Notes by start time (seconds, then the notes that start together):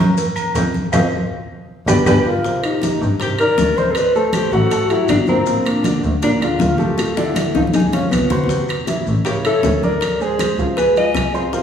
Already playing: D#3 A#3 C#4
0.17 cowbell, high conga, maracas
0.36 high conga, low agogo, claves, maracas
0.55 F2, cowbell, high conga, low timbale, low agogo, maracas
0.74 high conga, maracas
0.92 F2 C5 D#5 F5, cowbell, high conga, high timbale, claves, maracas
1.87 G1 G4 B4 D5, cowbell, high conga, high timbale, claves, maracas
2.06 G1 G4 B4 D5, cowbell, high conga, high timbale, claves, maracas
2.27 F4 A#4
2.44 C3 C4 C5, high bongo, high conga, maracas
2.63 D#4 G4, high conga, high timbale, claves, maracas
2.82 D#3 D#4 D#5, high bongo, high conga, high timbale, maracas
3.01 G2, high conga, maracas
3.20 C3 C4 G4 A#4 C5, high bongo, high conga, high timbale, maracas
3.39 D#3 D#4 A#4 D5, high conga, high timbale, claves, maracas
3.58 D2, high bongo, low bongo, high conga, maracas
3.77 C4 C5 D#5 C6, high conga, maracas
3.91 A4 B4 C5, high timbale
3.95 D5, high bongo, high conga, claves, maracas
4.15 A3 A4 C5 A5, high bongo, high conga, maracas
4.33 G4 C5, high bongo, high conga, high timbale, claves, maracas
4.52 A1 F#3 F#4 A4 F#5, high bongo, high conga, maracas
4.71 A3 A4 A5, high bongo, high conga, high timbale, maracas
4.90 F#3 E4 F#4 G4 F#5, high conga, high timbale, maracas
5.08 G1 D4 F#4, high bongo, low bongo, high conga, high timbale, claves, maracas
5.26 A#3 C4 F4 A#4 A#5, high bongo, high conga, maracas
5.46 A#2 A#3 A#4, high bongo, high conga, maracas
5.65 A#3 D4, high conga, high timbale, claves, maracas
5.84 D3 D4 D5, high bongo, high conga, high timbale, maracas
6.03 D2, high conga, maracas
6.22 A#2 A#3 D4 F4 A#4, high bongo, high conga, high timbale, maracas
6.41 D3 D4 F4 G#4 D5, high conga, high timbale, claves, maracas
6.59 D2 F4 A#4, high bongo, low bongo, high conga, maracas
6.78 A3 G4 A4 A#4 A5, high conga, maracas
6.97 F4 A4, high bongo, high conga, high timbale, claves, maracas
7.16 D3 D4 E4 A4 D5, high bongo, high conga, maracas
7.36 high bongo, high conga, high timbale, claves, maracas
7.55 C#2 F3 D#4 F4 F5, low bongo, high conga, maracas
7.67 high conga
7.73 G#3 D#4 G4 G#4 G#5, low bongo, high timbale, maracas
7.80 high conga
7.93 F3 C#4 F4 F5, low bongo, high conga, high timbale, maracas
8.10 C2 B3 F4, low bongo, high timbale, claves, maracas
8.18 low conga
8.30 C4 F#4 B4 C5 C6, low bongo, low conga, maracas
8.44 low conga
8.49 C3 C4 C5, high bongo, high conga, maracas
8.68 high conga, high timbale, claves, maracas
8.87 E3 E4 E5, high bongo, high conga, high timbale, maracas
9.07 A1, high conga, maracas
9.25 C#3 C#4 G4 A#4 C#5, high bongo, high conga, high timbale, maracas
9.45 E3 E4 A4 C#5 E5, high conga, high timbale, claves, maracas
9.63 D2, high bongo, low bongo, high conga, low timbale, maracas
9.83 D4 A#4 D5 D6, high conga, maracas
10.01 high bongo, high conga, high timbale, claves, maracas
10.20 G#3 G#4 C5 G#5, high bongo, high conga, maracas
10.39 high bongo, high conga, high timbale, claves, maracas
10.58 C#2 F3 F4 F5, high bongo, high conga, maracas
10.77 G#3 G#4 B4 D#5 G#5, high bongo, high conga, high timbale, maracas
10.96 F3 F4 D#5 F5 G#5, high conga, high timbale, maracas
11.14 C2, high bongo, low bongo, high conga, high timbale, claves, maracas
11.34 C4 F4 G#4 C5 C6, high bongo, maracas
11.53 C3 C4 F4 A#4 C5, high bongo, high conga, maracas